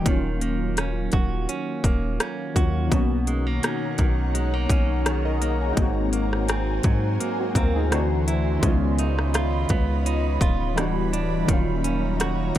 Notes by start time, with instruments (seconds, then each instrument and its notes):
Already playing: clean electric guitar G4
0.02 synth keys D#3 F#3
0.06 808-style bass D#1, clean electric guitar D#3, synth keys A#3 C#4, kick, closed hi-hat
0.11 synth keys F4
0.41 clean electric guitar A#3, closed hi-hat
0.77 clean electric guitar C#4, cross-stick, closed hi-hat
1.12 808-style bass D#1, clean electric guitar F#4, kick, closed hi-hat
1.49 clean electric guitar C#4, closed hi-hat
1.84 808-style bass D#1, clean electric guitar A#3, kick, closed hi-hat
2.20 clean electric guitar C#4, cross-stick, closed hi-hat
2.54 808-style bass D#2, synth keys D#3 F#3 A#3 C#4, clean electric guitar F#4, kick, closed hi-hat
2.58 synth keys F4
2.87 synth keys D#3 A#3, ambient pad C#5 F#5 A#5
2.92 808-style bass B1, clean electric guitar B2, synth keys B3 C#4, ambient pad D#4, kick, closed hi-hat
2.96 synth keys F#4
3.27 clean electric guitar G#3, closed hi-hat
3.47 clean electric guitar A#3
3.63 clean electric guitar C#4, cross-stick, closed hi-hat
3.98 808-style bass B1, clean electric guitar D#3, kick, closed hi-hat
4.34 clean electric guitar G#3, closed hi-hat
4.54 clean electric guitar A#3
4.70 808-style bass B1, clean electric guitar C#4, kick, closed hi-hat
5.06 clean electric guitar D#3, synth keys G#4 C#5, cross-stick, closed hi-hat
5.25 synth keys A#4 D#5
5.42 clean electric guitar A#3, closed hi-hat
5.61 synth keys G#4 C#5
5.73 synth keys G#3 D#4, ambient pad F#4
5.77 808-style bass G#1, clean electric guitar G#2, synth keys A#3 C4, ambient pad C5 G#5, kick, closed hi-hat
5.82 synth keys F#4
6.13 clean electric guitar A#3, closed hi-hat
6.33 cross-stick
6.48 clean electric guitar C4, cross-stick, closed hi-hat
6.83 808-style bass G#2, clean electric guitar F#3, kick, closed hi-hat
7.20 clean electric guitar A#3, closed hi-hat
7.40 synth keys C4 F#4
7.55 808-style bass D2, clean electric guitar C4, synth keys F4 A#4, kick, closed hi-hat
7.76 synth keys D#4 G#4
7.90 clean electric guitar D3, synth keys E3 A3 C4 D4, cross-stick, closed hi-hat
7.95 synth keys F#4
8.28 clean electric guitar E4, closed hi-hat
8.59 808-style bass C#2, synth keys D#3 G#3, ambient pad F4 C#5 D#5 B5, kick, closed hi-hat
8.63 clean electric guitar C#3, synth keys B3 C#4
8.68 synth keys F4
8.99 clean electric guitar D#4, closed hi-hat
9.19 cross-stick
9.34 clean electric guitar F4, cross-stick, closed hi-hat
9.69 808-style bass C#2, clean electric guitar B3, kick, closed hi-hat
10.06 clean electric guitar D#4, closed hi-hat
10.41 808-style bass D1, clean electric guitar F4, kick, closed hi-hat
10.76 synth keys E3 G3 B3 D4, clean electric guitar E3, cross-stick, closed hi-hat
10.80 synth keys F#4
11.13 clean electric guitar D4, closed hi-hat
11.45 808-style bass D#1, synth keys D#3 F#3, clean electric guitar D#3, ambient pad F#3 C#5 D#5 A#5, kick, closed hi-hat
11.49 synth keys A#3 C#4
11.54 synth keys F4
11.84 clean electric guitar C#4, closed hi-hat
12.20 clean electric guitar F#4, cross-stick, closed hi-hat
12.55 closed hi-hat